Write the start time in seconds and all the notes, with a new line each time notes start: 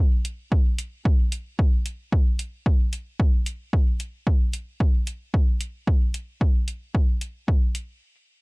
0.25 closed hi-hat
0.52 kick
0.78 closed hi-hat
1.05 kick
1.32 closed hi-hat
1.59 kick
1.86 closed hi-hat
2.12 kick
2.39 closed hi-hat
2.66 kick
2.93 closed hi-hat
3.20 kick
3.46 closed hi-hat
3.73 kick
4.00 closed hi-hat
4.27 kick
4.53 closed hi-hat
4.80 kick
5.07 closed hi-hat
5.34 kick
5.61 closed hi-hat
5.87 kick
6.14 closed hi-hat
6.41 kick
6.68 closed hi-hat
6.95 kick
7.21 closed hi-hat
7.48 kick
7.75 closed hi-hat